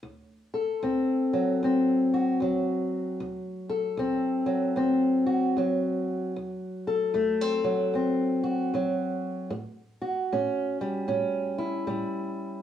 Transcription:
0.03 0.77 D2 medium
0.54 2.13 A4 soft
0.83 1.56 D2 medium
0.83 1.64 C4 medium
1.33 2.42 F#3 soft
1.63 2.36 D2 medium
1.63 3.23 C4 medium
2.14 3.69 F#4 soft
2.40 3.14 D2 medium
2.40 4.46 F#3 soft
3.20 3.94 D2 medium
3.70 5.26 A4 soft
3.97 4.72 D2 medium
3.97 4.77 C4 medium
4.46 5.57 F#3 medium
4.76 5.51 D2 medium
4.76 6.33 C4 medium
5.26 6.33 F#4 soft
5.57 6.31 D2 medium
5.57 7.63 F#3 soft
6.36 7.10 D2 medium
6.87 8.43 A4 soft
7.14 7.88 D2 medium
7.14 7.41 A3 medium
7.41 7.94 C4 soft
7.64 8.73 F#3 soft
7.94 8.67 D2 medium
7.94 9.49 C4 medium
8.44 9.49 F#4 soft
8.74 9.47 D2 medium
8.74 9.53 F#3 soft
9.50 10.25 A2 medium
10.02 11.58 F#4 soft
10.32 11.05 A2 medium
10.32 11.07 C#4 medium
10.81 11.86 G3 soft
11.08 11.82 A2 medium
11.08 12.62 C#4 medium
11.58 12.62 E4 soft
11.87 12.61 A2 medium
11.87 12.62 G3 medium

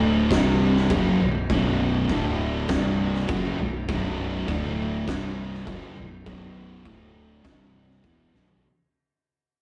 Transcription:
0.00 0.27 D1 medium
0.00 0.30 D2 medium
0.00 0.30 A2 loud
0.00 0.31 D3 loud
0.30 0.87 C1 medium
0.30 0.90 C2 loud
0.30 0.90 G2 loud
0.30 0.90 C3 loud
0.30 kick loud
0.30 snare loud
0.30 crash medium
0.76 snare soft
0.90 1.19 F#1 loud
0.90 1.20 F#2 medium
0.90 1.20 C#3 loud
0.90 1.21 F#3 loud
0.90 kick loud
0.90 crash medium
1.21 1.49 B0 medium
1.21 1.46 B1 medium
1.21 1.46 F#2 medium
1.50 2.06 B0 loud
1.50 2.10 B1 loud
1.50 2.10 F#2 loud
1.50 2.10 B2 loud
1.50 kick loud
1.50 crash medium
2.09 2.66 D1 medium
2.09 2.69 D2 medium
2.09 2.69 A2 loud
2.09 2.70 D3 loud
2.09 kick loud
2.09 crash medium
2.68 3.25 C1 medium
2.68 3.28 C2 loud
2.68 3.29 G2 loud
2.68 3.29 C3 loud
2.68 kick loud
2.68 snare loud
2.68 crash medium
3.15 snare soft
3.28 3.57 F#1 medium
3.28 3.58 F#2 medium
3.28 3.59 C#3 loud
3.28 3.59 F#3 loud
3.28 kick loud
3.28 crash medium
3.59 3.87 B0 medium
3.59 3.83 B1 medium
3.59 3.83 F#2 medium
3.88 4.44 B0 loud
3.88 4.47 B1 loud
3.88 4.48 F#2 loud
3.88 4.48 B2 loud
3.88 kick loud
3.88 crash medium
4.48 5.04 D1 loud
4.48 5.07 D2 medium
4.48 5.07 A2 loud
4.48 5.07 D3 loud
4.48 kick loud
4.48 crash medium
5.07 5.63 C1 medium
5.07 5.66 C2 loud
5.07 5.66 G2 loud
5.07 5.66 C3 loud
5.07 kick loud
5.07 snare loud
5.07 crash medium
5.54 snare soft
5.67 5.94 F#1 medium
5.67 5.96 F#2 loud
5.67 5.96 C#3 loud
5.67 5.96 F#3 loud
5.67 kick loud
5.67 crash medium
5.97 6.25 B0 medium
5.97 6.20 B1 medium
5.97 6.20 F#2 medium
6.24 6.82 B0 medium
6.24 6.84 B1 loud
6.24 6.84 F#2 loud
6.24 6.84 B2 loud
6.24 kick loud
6.24 crash medium
6.85 7.41 D1 medium
6.85 7.43 D2 loud
6.85 7.44 A2 loud
6.85 7.45 D3 loud
6.85 kick loud
6.85 crash medium
7.44 8.00 C1 medium
7.44 8.02 C2 loud
7.44 8.03 G2 loud
7.44 8.03 C3 loud
7.44 kick loud
7.44 snare loud
7.44 crash medium
7.90 snare soft
8.03 8.32 E1 medium
8.03 8.32 E2 medium
8.03 8.33 B2 medium
8.03 8.33 E3 loud
8.03 kick loud
8.03 crash medium
8.32 8.62 B0 loud
8.32 8.62 B1 medium
8.32 8.62 F#2 medium
8.32 8.63 B2 medium
8.32 snare medium
8.48 floor tom loud

